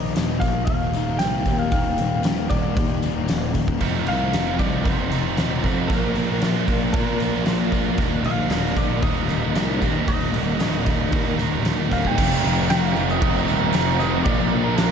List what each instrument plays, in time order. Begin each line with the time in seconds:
Already playing: picked electric bass A#1, distorted electric guitar D#2 A#2 D#3 A#3, clean electric guitar D#5
0.15 picked electric bass D#1, distorted electric guitar D#2 A#2 D#3, snare, open hi-hat, tambourine
0.31 tambourine
0.40 picked electric bass A#1, distorted electric guitar D#3, clean electric guitar F5, kick, snare, open hi-hat, tambourine
0.44 distorted electric guitar A#2
0.65 picked electric bass D#1, clean electric guitar F5, kick, open hi-hat
0.69 tambourine
0.82 tambourine
0.93 picked electric bass D#1, distorted electric guitar A#2 D#3, open hi-hat, tambourine
1.09 tambourine
1.19 picked electric bass C2, distorted electric guitar D#2 A#2 D#3, clean electric guitar G5, snare, open hi-hat, tambourine
1.46 picked electric bass D#2, kick, open hi-hat, tambourine
1.59 clean electric guitar F5, tambourine
1.71 picked electric bass D#1, distorted electric guitar D#2 A#2 D#3, clean electric guitar F5, kick, open hi-hat, tambourine
1.84 tambourine
1.97 picked electric bass D#1, distorted electric guitar A#2 D#3, open hi-hat, tambourine
2.23 picked electric bass D#1, distorted electric guitar D#2 A#2 D#3, snare, open hi-hat, tambourine
2.49 picked electric bass D#1, distorted electric guitar A#2 D#3, clean electric guitar D5, kick, open hi-hat, tambourine
2.63 tambourine
2.76 picked electric bass D#2, kick, open hi-hat, tambourine
2.89 tambourine
3.02 picked electric bass D#1, distorted electric guitar A#2 D#3, open hi-hat, tambourine
3.28 picked electric bass D#1, distorted electric guitar D#2 A#2 D#3, snare, open hi-hat, tambourine
3.42 tambourine
3.54 kick, open hi-hat, tambourine
3.68 kick, tambourine
3.81 picked electric bass F1, distorted electric guitar F2 C3 F3, overdriven electric guitar F2 C3 F3 A3 C4 D#4, kick, open hi-hat, tambourine
3.95 tambourine
4.07 picked electric bass C2, distorted electric guitar C3 F3, clean electric guitar F5, open hi-hat, tambourine
4.33 picked electric bass F1, distorted electric guitar F2 C3 F3, overdriven electric guitar F3 A3 C4 D#4, snare, open hi-hat, tambourine
4.48 tambourine
4.59 picked electric bass C2, distorted electric guitar C3 F3, clean electric guitar D5, kick, open hi-hat, tambourine
4.84 picked electric bass F1, overdriven electric guitar F3 A3 C4 D#4, clean electric guitar C5, kick, open hi-hat, tambourine
4.99 tambourine
5.12 picked electric bass F1, distorted electric guitar C3 F3, overdriven electric guitar F3 A3 C4 D#4, open hi-hat, tambourine
5.26 tambourine
5.37 picked electric bass D#1, distorted electric guitar F2 C3 F3, overdriven electric guitar F2 C3 F3 A3 C4 D#4, snare, open hi-hat, tambourine
5.64 picked electric bass F2, overdriven electric guitar F3 A3 C4 D#4, kick, open hi-hat, tambourine
5.80 tambourine
5.88 picked electric bass A#1, distorted electric guitar A#2 F3 A#3, overdriven electric guitar A#2 F3 A#3, clean electric guitar A#4, kick, open hi-hat
5.92 overdriven electric guitar D4 F4, tambourine
6.05 tambourine
6.15 picked electric bass A#1, distorted electric guitar F3 A#3, open hi-hat, tambourine
6.41 picked electric bass A#1, distorted electric guitar A#2 F3 A#3, overdriven electric guitar F3 A#3 D4 F4, snare, open hi-hat, tambourine
6.57 tambourine
6.68 picked electric bass A#1, distorted electric guitar F3 A#3, kick, open hi-hat
6.93 picked electric bass A#2, overdriven electric guitar F3 A#3 D4 F4, clean electric guitar A#4, kick, open hi-hat
6.97 tambourine
7.19 picked electric bass A#1, distorted electric guitar F3 A#3, overdriven electric guitar A#3 D4 F4, open hi-hat, tambourine
7.35 tambourine
7.46 picked electric bass A#1, overdriven electric guitar A#2 F3 A#3 D4 F4, distorted electric guitar A#2 F3 A#3, snare, open hi-hat, tambourine
7.72 overdriven electric guitar A#3 D4 F4, kick, open hi-hat, tambourine
7.88 tambourine
7.98 picked electric bass D#1, distorted electric guitar D#2 A#2 D#3, overdriven electric guitar D#2 A#2 D#3 G3 A#3 D#4, kick, open hi-hat, tambourine
8.14 tambourine
8.24 picked electric bass A#1, distorted electric guitar A#2 D#3, clean electric guitar F5, open hi-hat, tambourine
8.49 picked electric bass D#1, distorted electric guitar D#2 A#2 D#3, overdriven electric guitar D#3 G3 A#3 D#4, snare, open hi-hat, tambourine
8.76 picked electric bass A#1, distorted electric guitar A#2 D#3, clean electric guitar D5, kick, open hi-hat, tambourine
9.02 picked electric bass D#1, overdriven electric guitar D#3 G3 A#3 D#4, clean electric guitar D#5, kick, open hi-hat, tambourine
9.17 tambourine
9.29 picked electric bass D#1, distorted electric guitar A#2 D#3, overdriven electric guitar D#3 G3 A#3 D#4, open hi-hat, tambourine
9.43 tambourine
9.55 picked electric bass C2, distorted electric guitar D#2 A#2 D#3, overdriven electric guitar D#2 A#2 D#3 G3 A#3 D#4, snare, open hi-hat, tambourine
9.82 picked electric bass D#2, overdriven electric guitar D#3 G3 A#3 D#4, kick, open hi-hat, tambourine
9.95 tambourine
10.08 picked electric bass D#1, distorted electric guitar D#2 A#2 D#3, overdriven electric guitar D#2 A#2 D#3 G3 A#3 D#4, clean electric guitar D#5, kick, open hi-hat, tambourine
10.21 tambourine
10.34 picked electric bass D#1, distorted electric guitar D#3, open hi-hat, tambourine
10.38 distorted electric guitar A#2
10.59 picked electric bass D#1, distorted electric guitar D#2 A#2, overdriven electric guitar D#3 G3 A#3 D#4, snare, open hi-hat, tambourine
10.64 distorted electric guitar D#3
10.73 tambourine
10.86 picked electric bass D#1, distorted electric guitar A#2 D#3, kick, snare, open hi-hat, tambourine
11.00 tambourine
11.12 picked electric bass D#2, overdriven electric guitar D#3 G3 A#3 D#4, kick, open hi-hat, tambourine
11.27 tambourine
11.38 picked electric bass D#1, distorted electric guitar A#2 D#3, overdriven electric guitar D#3 G3 A#3 D#4, open hi-hat, tambourine
11.52 tambourine
11.65 picked electric bass D#1, overdriven electric guitar D#2 A#2 D#3 G3 A#3 D#4, distorted electric guitar D#2 A#2 D#3, snare, open hi-hat, tambourine
11.79 tambourine
11.91 overdriven electric guitar D#3 G3 A#3 D#4, clean electric guitar F5, kick, open hi-hat, tambourine
12.05 clean electric guitar G5, kick, tambourine
12.17 picked electric bass F1, overdriven electric guitar F2 C3 F3 A3 C4 D#4, distorted electric guitar F2 C3 F3, kick, crash, tambourine
12.30 tambourine
12.44 picked electric bass F1, distorted electric guitar C3 F3
12.69 picked electric bass F1, distorted electric guitar F2 C3 F3, overdriven electric guitar F3 A3 C4 D#4, clean electric guitar F5, snare, tambourine, crash
12.95 picked electric bass F1, distorted electric guitar C3 F3, tambourine
13.10 clean electric guitar D#5, tambourine
13.21 picked electric bass F1, overdriven electric guitar F2 C3 F3 A3 C4 D#4, distorted electric guitar F2 C3 F3, clean electric guitar D#5, kick, crash
13.36 tambourine
13.48 picked electric bass D#1, distorted electric guitar C3 F3, overdriven electric guitar F3 A3 C4 D#4, tambourine
13.61 tambourine
13.73 picked electric bass F1, distorted electric guitar F2 C3, overdriven electric guitar F3 A3 C4 D#4, snare, tambourine, crash
13.77 distorted electric guitar F3
14.00 distorted electric guitar C3 F3, clean electric guitar D#5, tambourine
14.25 picked electric bass A#1, overdriven electric guitar A#2 F3 A#3 D4 F4, distorted electric guitar A#2 F3 A#3, clean electric guitar D5, kick, tambourine, crash
14.40 tambourine
14.52 picked electric bass A#1, distorted electric guitar F3 A#3
14.64 clean electric guitar A#4
14.76 distorted electric guitar A#2 F3, overdriven electric guitar F3 A#3 D4 F4, clean electric guitar A#4, snare, tambourine, crash
14.81 picked electric bass A#1, distorted electric guitar A#3